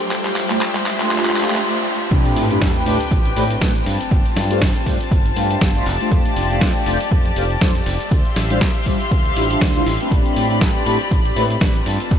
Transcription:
Already playing: G5, riser
0.00 closed hi-hat
0.11 D2 F4 C5 E5, clap, closed hi-hat
0.25 clap, closed hi-hat
0.36 A1, clap, open hi-hat
0.50 A3 D4 F4 G4 C5, clap, closed hi-hat
0.61 D2, clap, closed hi-hat
0.75 clap, closed hi-hat
0.86 A1, clap, open hi-hat
1.00 A3 D4 F4 G4 C5, clap, closed hi-hat
1.11 D2 A3 D4 F4 G4 C5, clap, closed hi-hat
1.18 clap
1.25 clap, closed hi-hat
1.31 clap
1.36 A1 A3 D4 F4 G4 C5, clap, open hi-hat
1.43 clap
1.50 clap, closed hi-hat
1.56 clap
2.11 A1 A3 C4 D4 G4 B4 G5, kick, closed hi-hat, sub drop
2.25 closed hi-hat
2.36 A2, open hi-hat
2.50 A3 C4 D4 G4 B4, closed hi-hat
2.61 A1, kick, snare, closed hi-hat
2.86 A2 A3 C4 D4 G4 B4, open hi-hat
3.00 closed hi-hat
3.11 A1, kick, closed hi-hat
3.25 closed hi-hat
3.36 A2 A3 C4 D4 G4 B4, open hi-hat
3.50 closed hi-hat
3.61 A1 A3 C4 D4 G4 B4, kick, snare, closed hi-hat
3.76 closed hi-hat
3.86 G2 F4 A5, open hi-hat
4.01 closed hi-hat
4.11 G1, kick, closed hi-hat
4.25 muted fingered electric bass stroke, closed hi-hat
4.36 G2, snare, open hi-hat
4.50 A3 D4 F4 G4 C5, closed hi-hat
4.61 G1, kick, snare, closed hi-hat
4.76 closed hi-hat
4.86 G2 A3 D4 F4 G4 C5, kick, open hi-hat
5.01 closed hi-hat
5.11 G1, kick, closed hi-hat
5.26 closed hi-hat
5.36 G2 A3 D4 F4 G4 C5, open hi-hat
5.50 A3 D4 F4 G4 C5, closed hi-hat
5.61 G1, kick, snare, closed hi-hat
5.75 A3 D4 F4 G4 C5, closed hi-hat
5.86 F1 G4 D5, open hi-hat
6.00 A3 D4 F4 G4 C5, closed hi-hat
6.11 F2, kick, closed hi-hat
6.26 closed hi-hat
6.36 F1, open hi-hat
6.50 A3 D4 F4 G4 C5, closed hi-hat
6.61 F2, kick, snare, closed hi-hat
6.86 F1 A3 D4 F4 G4 C5, open hi-hat
7.00 closed hi-hat
7.11 F2, kick, closed hi-hat
7.25 closed hi-hat
7.36 F1 A3 D4 F4 G4 C5, open hi-hat
7.51 closed hi-hat
7.61 F2 A3 D4 F4 G4 C5, kick, snare, closed hi-hat
7.75 closed hi-hat
7.86 F1, open hi-hat
8.00 closed hi-hat
8.11 D2 G4 E5 F5 C6, kick, closed hi-hat
8.25 muted fingered electric bass stroke, closed hi-hat
8.36 A1, snare, open hi-hat
8.50 G3 D4 E4 F4 C5, closed hi-hat
8.61 D2, kick, snare, closed hi-hat
8.75 closed hi-hat
8.86 A1 G3 D4 E4 F4 C5, kick, open hi-hat
9.00 closed hi-hat
9.11 D2, kick, closed hi-hat
9.25 closed hi-hat
9.36 A1 G3 D4 E4 F4 C5, open hi-hat
9.50 G3 D4 E4 F4 C5, closed hi-hat
9.61 D2, kick, snare, closed hi-hat
9.75 G3 D4 E4 F4 C5, closed hi-hat
9.86 A1, open hi-hat
10.00 A3 C4 D4 G4 B4, closed hi-hat
10.11 A1 C4 G4 D5 B5, kick, closed hi-hat
10.26 closed hi-hat
10.36 A2, open hi-hat
10.50 A3 C4 D4 G4 B4, closed hi-hat
10.61 A1, kick, snare, closed hi-hat
10.86 A2 A3 C4 D4 G4 B4, open hi-hat
11.00 closed hi-hat
11.11 A1, kick, closed hi-hat
11.25 closed hi-hat
11.36 A2 A3 C4 D4 G4 B4, open hi-hat
11.50 closed hi-hat
11.61 A1 A3 C4 D4 G4 B4, kick, snare, closed hi-hat
11.75 closed hi-hat
11.86 G2 F4 A5, open hi-hat
12.00 closed hi-hat
12.11 G1, kick, closed hi-hat

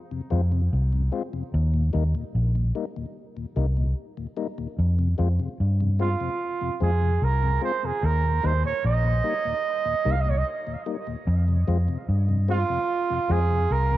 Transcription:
0.11 F2 C3
0.30 F2 G#3 C4 F4
0.52 F2 C3
0.73 C2
0.93 F2 C3
1.12 G#3 C4 F4
1.33 F2 C3
1.54 D#2
1.74 D#2 A#2
1.93 D#2 G3 A#3 D#4
2.15 D#2 A#2
2.35 A#1
2.55 D#2 A#2
2.75 G3 A#3 D#4
2.96 D#2 A#2
3.36 D#2 A#2
3.56 C2 G3 A#3 D#4
3.77 D#2 A#2
4.17 D#2 A#2
4.37 G3 A#3 D#4
4.58 D#2 A#2
4.79 F2
4.99 F2 C3
5.18 F2 G#3 C4 F4
5.39 F2 C3
5.60 G2
5.80 F2 C3
5.99 G#3 C4 F4
6.20 F2 C3
6.61 F2 C3
6.81 F2 G#3 C4 F4 G#4
7.02 F2 C3
7.22 C2 A#4
7.43 F2 C3
7.62 G#3 C4 F4 C5
7.83 F2 C3 G#4
8.03 D#2 A#4
8.24 D#2 A#2
8.43 D#2 G3 A#3 D#4 C5
8.64 D#2 A#2 C#5
8.84 A#1 D#5
9.04 D#2 A#2
9.24 G3 A#3 D#4
9.45 D#2 A#2
9.85 D#2 A#2
10.05 C2 G3 A#3 D#4
10.11 F5
10.21 D#5
10.26 D#2 A#2 C#5
10.38 D#5
10.67 D#2 A#2
10.86 G3 A#3 D#4
11.07 D#2 A#2
11.27 F2
11.48 F2 C3
11.67 F2 G#3 C4 F4
11.88 F2 C3
12.09 G2
12.29 F2 C3
12.48 G#3 C4 F4
12.70 F2 C3
13.10 F2 C3
13.29 F2 G#3 C4 F4 G#4
13.51 F2 C3
13.70 C2 A#4
13.91 F2 C3

